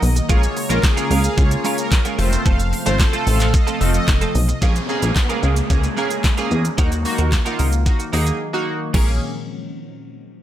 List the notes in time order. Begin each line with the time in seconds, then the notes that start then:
Already playing: D#3 F#3 A#3
0.02 B1, muted clean electric guitar stroke, open hi-hat, shaker
0.16 muted clean electric guitar stroke, closed hi-hat, shaker
0.29 A#1 C#3 G#3 A#3 C#4 F4 G#4 A#4 C#5, kick, shaker
0.43 muted clean electric guitar stroke, closed hi-hat, shaker
0.56 muted clean electric guitar stroke, open hi-hat, shaker
0.69 A#1 G#3 A#3 C#4 F4 A#4, closed hi-hat, shaker
0.83 G#4, muted clean electric guitar stroke, kick, snare, clap, shaker
0.96 G#3 C#4 F4 A#4, closed hi-hat, shaker
1.10 C#2 G#3 C#4 F4 A#4 F5, open hi-hat, shaker
1.24 muted clean electric guitar stroke, closed hi-hat, shaker
1.37 C#2 A#3 C#4 F4 G#4 C#5, muted clean electric guitar stroke, kick, shaker
1.51 muted clean electric guitar stroke, closed hi-hat, shaker
1.64 G#3 C#4 F4 A#4, open hi-hat, shaker
1.78 A#4, muted clean electric guitar stroke, closed hi-hat, shaker
1.91 muted clean electric guitar stroke, kick, snare, clap, shaker
2.05 G#3 C#4 F4 A#4, closed hi-hat, shaker
2.18 F1 C3 F3 A3 C4 F4 A4 C5, muted clean electric guitar stroke, open hi-hat, shaker
2.32 muted clean electric guitar stroke, closed hi-hat, shaker
2.45 F1 A3 C4 F4 A4 F5, kick, shaker
2.59 muted clean electric guitar stroke, closed hi-hat, shaker
2.73 muted clean electric guitar stroke, open hi-hat, shaker
2.86 G#1 A3 C4 F4 A4 C5, closed hi-hat, shaker
3.00 A4, muted clean electric guitar stroke, kick, snare, clap, shaker
3.13 A3 C4 F4 A4, closed hi-hat, shaker
3.26 A1 A3 C4 F4 A4 F5, open hi-hat, shaker
3.40 muted clean electric guitar stroke, clap, closed hi-hat, shaker
3.53 D#5, muted clean electric guitar stroke, kick, shaker
3.67 A3 C4 F4 A4, closed hi-hat, shaker
3.81 F1 A3 C4 F4 A4, muted clean electric guitar stroke, open hi-hat, shaker
3.94 D#5, muted clean electric guitar stroke, closed hi-hat, shaker
4.08 F1, muted clean electric guitar stroke, kick, snare, clap, shaker
4.21 A3 C4 F4 A4, closed hi-hat, shaker
4.35 B1, muted clean electric guitar stroke, open hi-hat, shaker
4.48 muted clean electric guitar stroke, closed hi-hat, shaker
4.62 A#1 C#3 G#3 A#3 C#4 F4 G#4 A#4, kick, downlifter, shaker
4.75 muted clean electric guitar stroke, closed hi-hat, shaker
4.89 A#3 C#4 G#4, muted clean electric guitar stroke, shaker
5.02 A#1 G#3 C#4 F4 A#4, closed hi-hat, shaker
5.16 muted clean electric guitar stroke, kick, snare, clap, shaker
5.29 G#3 A#3 C#4 F4 G#4 A#4, closed hi-hat, shaker
5.43 C#2 G#3 C#4 F4 A#4, shaker
5.56 muted clean electric guitar stroke, closed hi-hat, shaker
5.70 C#2 A#3 C#4 G#4, muted clean electric guitar stroke, kick, shaker
5.83 muted clean electric guitar stroke, closed hi-hat, shaker
5.97 G#3 A#3 C#4 F4 G#4 A#4, shaker
6.10 muted clean electric guitar stroke, closed hi-hat, shaker
6.24 muted clean electric guitar stroke, kick, snare, clap, shaker
6.37 G#3 A#3 C#4 F4 G#4 A#4, closed hi-hat, shaker
6.51 E2, muted clean electric guitar stroke, shaker
6.65 muted clean electric guitar stroke, closed hi-hat, shaker
6.77 D#2 D#3 F#3 A#3 D#4 F#4 A#4, kick, shaker
6.91 muted clean electric guitar stroke, closed hi-hat, shaker
7.05 A#3 D#4 F#4, muted clean electric guitar stroke, open hi-hat, shaker
7.18 D#2 A#3 D#4 F#4 A#4, closed hi-hat, shaker
7.32 muted clean electric guitar stroke, kick, snare, clap, shaker
7.45 A#3 D#4 F4 F#4 A#4, closed hi-hat, shaker
7.58 C#2 A#3 D#4 F#4 A#4, open hi-hat, shaker
7.72 muted clean electric guitar stroke, closed hi-hat, shaker
7.86 A#3 D#4 F#4, muted clean electric guitar stroke, kick, shaker
7.99 muted clean electric guitar stroke, closed hi-hat, shaker
8.13 D#2 A#3 D#4 F#4 G#4 A#4, open hi-hat, shaker
8.26 muted clean electric guitar stroke, closed hi-hat, shaker
8.53 A#3 D#4 F#4
8.94 A#1 G#3 A#3 C#4 F4 G#4 A#4, kick, crash